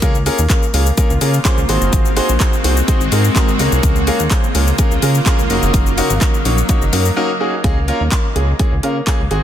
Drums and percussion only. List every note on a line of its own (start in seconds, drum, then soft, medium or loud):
0.02 kick loud
0.02 closed hi-hat medium
0.02 shaker medium
0.15 shaker medium
0.26 open hi-hat medium
0.26 shaker soft
0.39 shaker medium
0.50 kick loud
0.50 clap loud
0.50 closed hi-hat medium
0.50 shaker medium
0.63 shaker soft
0.74 open hi-hat medium
0.74 shaker medium
0.86 shaker medium
0.97 kick loud
0.97 closed hi-hat medium
0.97 shaker medium
1.10 shaker medium
1.21 open hi-hat medium
1.21 shaker medium
1.34 shaker medium
1.45 kick loud
1.45 clap loud
1.45 closed hi-hat medium
1.45 shaker medium
1.58 shaker medium
1.69 open hi-hat medium
1.69 shaker soft
1.82 shaker medium
1.93 kick loud
1.93 closed hi-hat medium
1.93 shaker medium
2.05 shaker medium
2.17 open hi-hat medium
2.17 shaker soft
2.29 shaker medium
2.40 kick loud
2.40 clap loud
2.40 closed hi-hat medium
2.40 shaker medium
2.53 shaker soft
2.64 open hi-hat medium
2.64 shaker medium
2.77 shaker medium
2.88 kick loud
2.88 closed hi-hat medium
2.88 shaker medium
3.01 shaker medium
3.12 open hi-hat medium
3.12 shaker medium
3.24 shaker medium
3.36 kick loud
3.36 clap loud
3.36 closed hi-hat medium
3.36 shaker medium
3.48 shaker medium
3.59 open hi-hat medium
3.59 shaker soft
3.72 shaker medium
3.83 kick loud
3.83 closed hi-hat medium
3.83 shaker medium
3.96 shaker medium
4.07 open hi-hat medium
4.07 shaker soft
4.20 shaker medium
4.31 kick loud
4.31 clap loud
4.31 closed hi-hat medium
4.31 shaker medium
4.44 shaker soft
4.55 open hi-hat medium
4.55 shaker medium
4.67 shaker medium
4.78 kick loud
4.78 closed hi-hat medium
4.78 shaker medium
4.91 shaker medium
5.02 open hi-hat medium
5.02 shaker medium
5.15 shaker medium
5.26 kick loud
5.26 clap loud
5.26 closed hi-hat medium
5.26 shaker medium
5.39 shaker medium
5.50 open hi-hat medium
5.50 shaker soft
5.63 shaker medium
5.74 kick loud
5.74 closed hi-hat medium
5.74 shaker medium
5.86 shaker medium
5.98 open hi-hat medium
5.98 shaker medium
6.10 shaker medium
6.21 kick loud
6.21 clap loud
6.21 closed hi-hat medium
6.21 shaker medium
6.34 shaker soft
6.45 open hi-hat medium
6.45 shaker medium
6.58 shaker medium
6.69 kick loud
6.69 closed hi-hat medium
6.69 shaker medium
6.82 shaker medium
6.93 open hi-hat medium
6.93 shaker medium
7.05 shaker medium
7.64 kick loud
7.64 closed hi-hat medium
7.88 closed hi-hat soft
8.12 kick loud
8.12 clap loud
8.12 closed hi-hat medium
8.36 closed hi-hat medium
8.59 kick loud
8.59 closed hi-hat medium
8.83 closed hi-hat medium
9.07 kick loud
9.07 clap loud
9.07 closed hi-hat medium
9.31 closed hi-hat soft